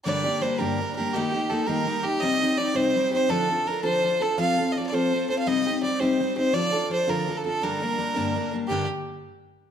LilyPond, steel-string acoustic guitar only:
\new Staff \with { instrumentName = "Steel-string acoustic guitar" } { \time 6/8 \key g \minor \tempo 4. = 111 <g, d g bes d' g'>8 <g bes d' g'>8 <g bes d' g'>8 <g, d g bes d' g'>8 <g bes d' g'>8 <g bes d' g'>8 | <ees g bes ees' g'>8 <bes ees' g'>8 <g bes ees' g'>8 <ees g bes ees' g'>8 <g bes ees' g'>8 <bes ees' g'>8 | <c g c' ees' g'>8 <c' ees' g'>8 <g c' ees' g'>8 <c g c' ees' g'>8 <g c' ees' g'>8 <c' ees' g'>8 | <d f d' f' a'>8 <d' f' a'>8 <f d' f' a'>8 <d f d' f' a'>8 <f d' f' a'>8 <d' f' a'>8 |
<f c' f' a'>8 <c' f' a'>8 <f c' f' a'>8 <f c' f' a'>8 <c' f' a'>8 <c' f' a'>8 | <c g c' ees' g'>8 <c' ees' g'>8 <g c' ees' g'>8 <c g c' ees' g'>8 <g c' ees' g'>8 <c' ees' g'>8 | <d f d' f' a'>8 <d' f' a'>8 <f d' f' a'>8 <d f d' f' a'>8 <f d' f' a'>8 <d' f' a'>8 | <g, d g bes d' bes'>8 <g bes d' bes'>8 <g bes d' bes'>8 <g, d g bes d' bes'>8 <g bes d' bes'>8 <g bes d' bes'>8 |
<g, d g bes d' g'>8 r2 r8 | }